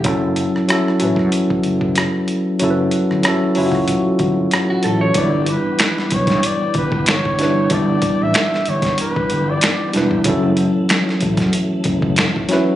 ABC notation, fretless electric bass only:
X:1
M:4/4
L:1/16
Q:"Swing 16ths" 1/4=94
K:Glyd
V:1 name="Fretless electric bass" clef=bass
F,,,3 z3 A,,, F,, z2 F,,,3 z3 | F,,,2 z G,,, z2 F,,,2 z2 G,,,2 z2 A,,,2 | G,,,3 z3 B,,, G,, z2 G,,,6 | G,,,2 z A,,, z2 G,,,2 z2 G,,,2 z2 E,,,2 |
F,,,3 z3 A,,, F,, z2 F,,,3 z3 |]